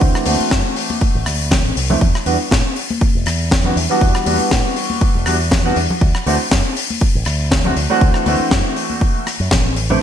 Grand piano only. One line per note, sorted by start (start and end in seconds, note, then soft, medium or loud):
0.00 0.23 E3 medium
0.00 0.23 A3 medium
0.00 0.24 C4 medium
0.00 0.24 D4 medium
0.00 0.24 F#4 medium
0.25 1.23 E3 medium
0.25 1.23 A3 medium
0.25 1.23 C4 medium
0.25 1.24 D4 medium
0.25 1.24 F#4 medium
1.90 1.96 E3 medium
1.90 1.96 A3 medium
1.90 1.96 C4 medium
1.90 1.96 D4 medium
1.90 1.97 E4 medium
2.26 2.34 E3 medium
2.26 2.34 G3 medium
2.26 2.34 B3 medium
2.26 2.34 D4 medium
2.26 2.34 F#4 medium
3.65 3.71 E3 medium
3.65 3.71 G3 medium
3.65 3.71 B3 medium
3.65 3.71 D4 medium
3.65 3.72 F#4 medium
3.90 4.23 E3 medium
3.90 4.23 G3 medium
3.90 4.24 B3 medium
3.90 4.24 D4 medium
3.90 4.24 F#4 medium
4.25 5.23 E3 medium
4.25 5.23 G3 medium
4.25 5.23 B3 medium
4.25 5.24 D4 medium
4.25 5.24 F#4 medium
5.26 5.34 E3 medium
5.26 5.34 G3 medium
5.26 5.34 B3 medium
5.26 5.34 D4 medium
5.26 5.34 F#4 medium
5.64 5.75 E3 medium
5.64 5.75 G3 medium
5.64 5.75 B3 medium
5.64 5.75 D4 medium
5.64 5.75 F#4 loud
6.26 6.34 E3 medium
6.26 6.34 A3 medium
6.26 6.34 C4 medium
6.26 6.34 D4 medium
6.26 6.34 F#4 medium
7.65 7.71 E3 medium
7.65 7.71 A3 medium
7.65 7.71 C4 medium
7.65 7.71 D4 medium
7.65 7.72 F#4 medium
7.90 8.23 E3 medium
7.90 8.23 A3 medium
7.90 8.23 C4 medium
7.90 8.24 D4 medium
7.90 8.24 F#4 loud
8.25 9.23 E3 medium
8.25 9.23 A3 medium
8.25 9.24 C4 medium
8.25 9.24 D4 medium
8.25 9.24 F#4 medium
9.90 9.96 E3 medium
9.90 9.96 A3 medium
9.90 9.96 C4 medium
9.90 9.96 D4 medium
9.90 9.96 E4 medium